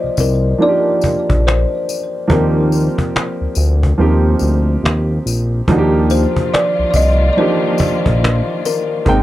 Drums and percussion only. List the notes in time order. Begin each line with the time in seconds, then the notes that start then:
0.17 cajon bass, tambourine
0.62 cajon slap
1.01 cajon bass, tambourine
1.30 cajon bass
1.48 cajon slap
1.89 cajon slap, tambourine
2.30 cajon bass
2.72 cajon slap, tambourine
2.98 cajon bass
3.16 cajon slap
3.55 cajon slap, tambourine
3.83 cajon bass
4.00 cajon slap
4.39 cajon slap, tambourine
4.85 cajon slap
5.27 cajon slap, tambourine
5.68 cajon bass
6.10 tambourine
6.36 cajon bass
6.54 cajon slap
6.94 cajon bass, tambourine
7.39 cajon slap
7.78 cajon bass, tambourine
8.06 cajon bass
8.24 cajon slap
8.65 cajon slap, tambourine
9.06 cajon bass